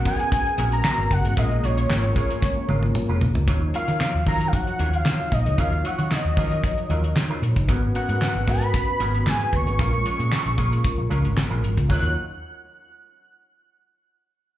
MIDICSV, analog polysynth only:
0, 0, Header, 1, 2, 480
1, 0, Start_track
1, 0, Key_signature, -6, "minor"
1, 0, Tempo, 526316
1, 1250, Time_signature, 4, 2, 24, 8
1, 13292, End_track
2, 0, Start_track
2, 0, Title_t, "Analog polysynth"
2, 0, Program_c, 0, 90
2, 0, Note_on_c, 0, 56, 73
2, 0, Note_on_c, 0, 59, 70
2, 0, Note_on_c, 0, 61, 74
2, 0, Note_on_c, 0, 66, 67
2, 0, Note_on_c, 0, 70, 93
2, 1210, Note_off_c, 0, 56, 0
2, 1212, Note_off_c, 0, 59, 0
2, 1214, Note_off_c, 0, 61, 0
2, 1216, Note_off_c, 0, 66, 0
2, 1244, Note_on_c, 0, 56, 66
2, 1247, Note_off_c, 0, 70, 0
2, 1249, Note_on_c, 0, 58, 62
2, 1252, Note_on_c, 0, 61, 61
2, 1256, Note_on_c, 0, 65, 66
2, 1259, Note_on_c, 0, 70, 78
2, 3131, Note_off_c, 0, 56, 0
2, 3133, Note_off_c, 0, 58, 0
2, 3135, Note_off_c, 0, 61, 0
2, 3137, Note_off_c, 0, 65, 0
2, 3138, Note_off_c, 0, 70, 0
2, 3165, Note_on_c, 0, 54, 79
2, 3170, Note_on_c, 0, 63, 72
2, 3175, Note_on_c, 0, 53, 73
2, 3179, Note_on_c, 0, 73, 89
2, 6971, Note_off_c, 0, 54, 0
2, 6974, Note_off_c, 0, 63, 0
2, 6976, Note_off_c, 0, 53, 0
2, 6978, Note_off_c, 0, 73, 0
2, 7002, Note_on_c, 0, 59, 81
2, 7006, Note_on_c, 0, 61, 68
2, 7011, Note_on_c, 0, 66, 70
2, 7016, Note_on_c, 0, 71, 92
2, 8890, Note_off_c, 0, 59, 0
2, 8892, Note_off_c, 0, 61, 0
2, 8894, Note_off_c, 0, 66, 0
2, 8897, Note_off_c, 0, 71, 0
2, 8925, Note_on_c, 0, 56, 65
2, 8930, Note_on_c, 0, 61, 60
2, 8935, Note_on_c, 0, 65, 61
2, 8940, Note_on_c, 0, 70, 76
2, 10811, Note_off_c, 0, 56, 0
2, 10814, Note_off_c, 0, 61, 0
2, 10816, Note_off_c, 0, 65, 0
2, 10819, Note_off_c, 0, 70, 0
2, 10851, Note_on_c, 0, 54, 84
2, 10851, Note_on_c, 0, 65, 73
2, 10852, Note_on_c, 0, 63, 74
2, 10852, Note_on_c, 0, 73, 98
2, 11074, Note_off_c, 0, 54, 0
2, 11074, Note_off_c, 0, 65, 0
2, 11075, Note_off_c, 0, 63, 0
2, 11075, Note_off_c, 0, 73, 0
2, 13292, End_track
0, 0, End_of_file